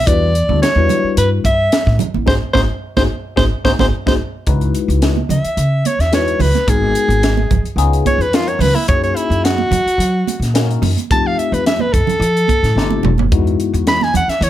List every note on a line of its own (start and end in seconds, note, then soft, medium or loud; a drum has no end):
0.06 0.42 E2 loud
0.06 0.32 G3 medium
0.06 0.32 D4 medium
0.06 0.33 E4 medium
0.06 0.33 F#4 medium
0.06 0.33 B4 medium
0.06 0.62 D5 medium
0.06 kick loud
0.06 closed hi-hat medium
0.35 closed hi-hat medium
0.49 0.60 D2 medium
0.49 0.66 G3 medium
0.49 0.66 D4 medium
0.49 0.66 E4 medium
0.49 0.66 F#4 medium
0.49 0.67 A4 medium
0.49 high conga medium
0.62 1.13 C#5 medium
0.62 snare loud
0.62 closed hi-hat medium
0.76 0.87 E2 medium
0.76 1.44 G3 medium
0.76 1.44 D4 medium
0.76 1.45 E4 medium
0.76 1.45 F#4 medium
0.76 1.45 B4 medium
0.89 closed hi-hat medium
0.89 high conga medium
0.89 low conga medium
1.04 muted upright bass stroke soft
1.17 1.40 G2 medium
1.17 1.30 B4 medium
1.17 closed hi-hat loud
1.44 1.68 G2 loud
1.44 1.96 E5 medium
1.44 kick medium
1.44 closed hi-hat medium
1.72 snare loud
1.72 closed hi-hat medium
1.87 1.97 A2 medium
1.87 kick medium
1.87 snare soft
1.99 muted upright bass stroke soft
1.99 closed hi-hat medium
1.99 low conga medium
2.14 2.25 A1 medium
2.14 high conga medium
2.26 2.38 G#1 loud
2.26 2.36 D#4 medium
2.26 2.36 F#4 medium
2.26 2.36 G#4 medium
2.26 2.35 C5 medium
2.26 kick loud
2.26 snare loud
2.26 high conga medium
2.54 2.66 G#1 loud
2.54 2.64 D#4 loud
2.54 2.64 F#4 loud
2.54 2.64 G#4 medium
2.54 2.61 C5 loud
2.54 kick medium
2.54 snare medium
2.54 high conga loud
2.97 3.06 G#1 medium
2.97 3.05 D#4 medium
2.97 3.06 F#4 medium
2.97 3.05 G#4 loud
2.97 3.03 C5 loud
2.97 kick medium
2.97 snare medium
2.97 high conga loud
3.36 3.48 G#1 medium
3.36 3.46 D#4 medium
3.36 3.46 F#4 medium
3.36 3.46 G#4 loud
3.36 3.44 C5 loud
3.36 kick loud
3.36 snare medium
3.36 high conga medium
3.64 3.76 G#1 loud
3.64 3.74 D#4 medium
3.64 3.74 F#4 loud
3.64 3.74 G#4 medium
3.64 3.72 C5 loud
3.64 kick medium
3.64 snare medium
3.64 high conga medium
3.79 3.89 G#1 medium
3.79 3.88 D#4 medium
3.79 3.88 F#4 medium
3.79 3.88 G#4 medium
3.79 3.86 C5 loud
3.79 kick medium
3.79 snare medium
3.79 high conga loud
4.06 4.16 G#1 medium
4.06 4.15 D#4 loud
4.06 4.15 F#4 medium
4.06 4.15 G#4 medium
4.06 4.14 C5 medium
4.06 kick medium
4.06 snare medium
4.06 high conga medium
4.47 4.71 C#2 medium
4.47 5.17 G#3 medium
4.47 5.17 D#4 medium
4.47 5.17 E4 medium
4.47 5.18 F#4 medium
4.47 5.18 B4 medium
4.47 kick loud
4.47 closed hi-hat medium
4.61 closed hi-hat soft
4.75 closed hi-hat medium
4.88 5.23 C#2 medium
4.88 closed hi-hat soft
5.02 snare loud
5.02 closed hi-hat medium
5.17 high conga medium
5.29 5.42 C#2 medium
5.29 5.88 E5 medium
5.29 closed hi-hat medium
5.29 low conga medium
5.44 muted upright bass stroke soft
5.44 closed hi-hat soft
5.57 5.81 C#3 medium
5.57 closed hi-hat medium
5.85 6.02 C#5 medium
5.85 closed hi-hat medium
5.85 high conga medium
5.99 6.34 E2 medium
5.99 6.13 E5 medium
5.99 snare soft
5.99 closed hi-hat soft
6.12 6.47 G#3 medium
6.12 6.48 D#4 medium
6.12 6.48 E4 medium
6.12 6.48 F#4 medium
6.12 6.48 B4 medium
6.12 6.43 C#5 medium
6.12 snare loud
6.12 closed hi-hat medium
6.28 closed hi-hat soft
6.39 6.52 C#2 loud
6.39 6.71 B4 medium
6.39 open hi-hat medium
6.39 low conga medium
6.55 snare soft
6.55 closed hi-hat soft
6.55 high conga medium
6.67 6.91 G#1 medium
6.67 7.37 G#3 medium
6.67 7.37 B3 medium
6.67 7.38 D#4 medium
6.67 7.38 F#4 medium
6.67 7.76 G#4 medium
6.67 7.38 A#4 medium
6.67 kick loud
6.67 closed hi-hat medium
6.95 closed hi-hat medium
7.08 7.44 G#1 medium
7.08 closed hi-hat soft
7.23 snare loud
7.23 closed hi-hat medium
7.37 high conga medium
7.51 7.63 G#1 medium
7.51 kick medium
7.51 closed hi-hat medium
7.51 low conga medium
7.64 muted upright bass stroke soft
7.64 closed hi-hat soft
7.76 8.00 C#2 medium
7.76 8.23 B3 medium
7.76 8.23 C#4 medium
7.76 8.23 D#4 medium
7.76 8.24 F4 medium
7.76 8.24 G#4 loud
7.76 closed hi-hat medium
7.93 closed hi-hat soft
8.06 8.23 C#5 medium
8.06 kick medium
8.06 closed hi-hat medium
8.06 high conga medium
8.18 8.54 F2 medium
8.18 8.37 B4 medium
8.18 closed hi-hat soft
8.33 8.68 B3 medium
8.33 8.68 C#4 medium
8.33 8.69 D#4 medium
8.33 8.69 F4 medium
8.33 8.50 F4 medium
8.33 8.69 A#4 medium
8.33 snare loud
8.33 closed hi-hat medium
8.48 8.63 C#5 medium
8.48 closed hi-hat soft
8.59 8.73 C#2 loud
8.59 8.77 B4 loud
8.59 open hi-hat medium
8.59 low conga medium
8.75 8.88 E4 medium
8.75 high conga medium
8.88 9.12 F#2 loud
8.88 9.58 A#3 medium
8.88 9.58 C#4 medium
8.88 9.59 D#4 medium
8.88 9.59 F#4 medium
8.88 9.59 G#4 medium
8.88 9.02 C#5 loud
8.88 kick loud
8.88 closed hi-hat medium
9.04 9.18 C#5 medium
9.04 closed hi-hat soft
9.16 9.46 E4 medium
9.16 closed hi-hat medium
9.30 9.65 F#2 medium
9.30 closed hi-hat soft
9.44 10.51 F#4 loud
9.44 snare loud
9.44 closed hi-hat medium
9.58 high conga medium
9.71 9.84 F#2 loud
9.71 closed hi-hat medium
9.71 low conga medium
9.86 muted upright bass stroke soft
9.86 closed hi-hat soft
9.98 10.22 F#3 medium
9.98 closed hi-hat medium
10.27 closed hi-hat medium
10.27 high conga medium
10.40 10.75 A#2 medium
10.40 snare soft
10.40 closed hi-hat soft
10.54 10.89 A#3 medium
10.54 10.90 C#4 medium
10.54 10.90 D#4 medium
10.54 10.90 F#4 medium
10.54 10.90 A#4 medium
10.54 snare loud
10.54 closed hi-hat medium
10.71 closed hi-hat soft
10.82 10.95 F#2 loud
10.82 open hi-hat medium
10.82 low conga medium
10.97 closed hi-hat soft
10.97 high conga medium
11.10 11.34 F2 medium
11.10 11.80 A3 medium
11.10 11.80 C4 medium
11.10 11.80 D#4 medium
11.10 11.81 F4 medium
11.10 11.81 G4 medium
11.10 11.28 A5 medium
11.10 kick loud
11.10 closed hi-hat medium
11.27 11.40 F5 medium
11.38 11.56 E5 medium
11.38 closed hi-hat medium
11.52 11.87 F2 medium
11.52 11.65 B4 medium
11.52 closed hi-hat soft
11.66 11.83 E5 medium
11.66 snare loud
11.66 closed hi-hat medium
11.79 11.94 B4 medium
11.79 high conga medium
11.93 12.06 F2 medium
11.93 13.27 A4 loud
11.93 kick medium
11.93 closed hi-hat medium
12.07 muted upright bass stroke soft
12.07 closed hi-hat soft
12.07 low conga medium
12.20 12.43 F3 medium
12.20 closed hi-hat medium
12.37 closed hi-hat soft
12.48 kick medium
12.48 closed hi-hat medium
12.48 high conga medium
12.63 12.74 A2 medium
12.63 snare soft
12.63 closed hi-hat soft
12.76 13.01 G1 medium
12.76 13.11 A3 medium
12.76 13.11 C4 medium
12.76 13.12 D#4 medium
12.76 13.12 F4 medium
12.76 13.12 G4 medium
12.76 snare medium
12.91 high conga medium
13.03 13.28 F1 medium
13.03 mid tom medium
13.03 low conga medium
13.18 floor tom medium
13.18 high conga medium
13.32 13.55 E2 loud
13.32 14.01 G#3 medium
13.32 14.01 B3 medium
13.32 14.01 D#4 medium
13.32 14.02 E4 medium
13.32 14.02 F#4 medium
13.32 kick loud
13.32 closed hi-hat medium
13.47 closed hi-hat soft
13.60 closed hi-hat medium
13.73 14.08 E2 medium
13.73 closed hi-hat soft
13.87 14.05 B5 medium
13.87 snare loud
13.87 closed hi-hat medium
14.01 14.14 G#5 medium
14.01 snare soft
14.01 high conga medium
14.14 14.26 E2 medium
14.14 14.31 F#5 medium
14.14 closed hi-hat medium
14.14 low conga medium
14.28 14.45 E5 medium
14.28 muted upright bass stroke soft
14.28 snare soft
14.28 closed hi-hat soft
14.41 14.50 E3 loud
14.41 14.50 C#5 medium
14.41 closed hi-hat medium